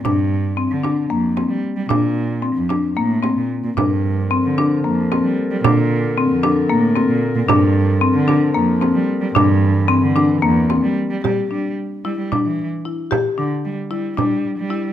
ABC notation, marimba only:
X:1
M:7/8
L:1/8
Q:1/4=113
K:Gdor
V:1 name="Marimba"
D2 C D B, C2 | D2 C D B, C2 | D2 C D B, C2 | D2 C D B, C2 |
D2 C D B, C2 | D2 C D B, C2 | G D2 E D2 E | G D2 E D2 E |]